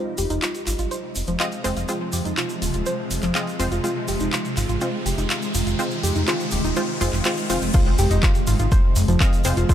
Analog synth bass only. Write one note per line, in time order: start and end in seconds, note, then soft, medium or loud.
0.18 0.26 F1 medium
0.30 0.38 F1 medium
0.67 0.75 G#1 loud
0.79 0.87 G#1 medium
1.16 1.23 F1 medium
1.28 1.36 F1 medium
1.64 1.72 F1 medium
1.77 1.84 F1 medium
2.13 2.21 F2 loud
2.25 2.33 F2 medium
2.62 2.70 D#1 loud
2.74 2.82 D#1 medium
3.11 3.19 F1 loud
3.23 3.31 F1 medium
3.59 3.67 F1 medium
3.72 3.80 F1 medium
4.08 4.16 F1 loud
4.20 4.28 F1 medium
4.57 4.65 G#1 loud
4.69 4.77 G#1 medium
5.06 5.14 F1 loud
5.18 5.26 F1 medium
5.55 5.62 F1 medium
5.67 5.75 F1 medium
6.03 6.11 F2 loud
6.16 6.23 F2 medium
6.52 6.60 D#1 loud
6.64 6.72 D#1 medium
7.01 7.09 F1 loud
7.13 7.21 F1 medium
7.50 7.58 F1 medium
7.62 7.70 F1 medium
7.99 8.06 F1 loud
8.11 8.19 F1 medium
8.47 8.55 G#1 loud
8.60 8.67 G#1 medium
8.96 9.04 F1 loud
9.08 9.16 F1 medium
9.45 9.53 F1 loud
9.57 9.65 F1 medium